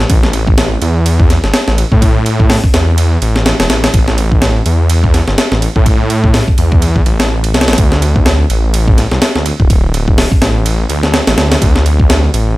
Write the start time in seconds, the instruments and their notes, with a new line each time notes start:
0.10 detuned saw bass A1, kick, ride
0.23 snare
0.33 ride
0.47 kick
0.58 snare, ride
0.82 detuned saw bass E2, ride
1.06 ride
1.20 kick
1.30 snare, ride
1.44 detuned saw bass G1, snare
1.54 snare, ride
1.68 detuned saw bass A1, snare
1.78 ride
1.92 detuned saw bass A2, kick
2.02 kick, ride
2.26 ride
2.40 kick
2.50 snare, open hi-hat
2.64 kick
2.74 detuned saw bass E2, snare, ride
2.98 ride
3.22 detuned saw bass A1, ride
3.36 snare
3.46 snare, ride
3.59 detuned saw bass E1, snare, ride
3.69 detuned saw bass A1, snare, ride
3.84 snare, ride
3.94 detuned saw bass A1, kick, ride
4.08 snare
4.18 ride
4.32 kick
4.42 snare, ride
4.66 detuned saw bass E2, ride
4.90 ride
5.04 kick
5.14 snare, ride
5.28 detuned saw bass G1, snare
5.38 snare, ride
5.52 detuned saw bass A1, snare
5.62 ride
5.76 detuned saw bass A2, kick
5.86 kick, ride
6.10 ride
6.24 kick
6.34 snare, open hi-hat
6.48 kick
6.58 detuned saw bass E2, ride
6.72 kick
6.82 ride
6.96 kick
7.06 detuned saw bass A1, ride
7.20 snare, ride
7.44 ride
7.54 detuned saw bass C2, snare, ride
7.61 snare, ride
7.68 detuned saw bass A1, snare, ride
7.73 snare, ride
7.78 detuned saw bass D2, kick, ride
7.92 snare
8.02 ride
8.16 kick
8.26 snare, ride
8.50 detuned saw bass A1, ride
8.74 ride
8.88 kick
8.98 snare, ride
9.12 detuned saw bass C2, snare
9.22 snare, ride
9.36 detuned saw bass D2, snare
9.46 ride
9.60 detuned saw bass D1, kick
9.70 kick, ride
9.94 ride
10.08 kick
10.18 snare, open hi-hat
10.32 kick
10.42 detuned saw bass A1, snare, ride
10.66 ride
10.89 detuned saw bass D2, ride
11.03 snare
11.14 snare, ride
11.27 detuned saw bass A1, snare, ride
11.38 detuned saw bass D2, snare, ride
11.52 snare, ride
11.62 detuned saw bass D2, kick, ride
11.76 snare
11.86 ride
12.00 kick
12.10 snare, ride
12.34 detuned saw bass A1, ride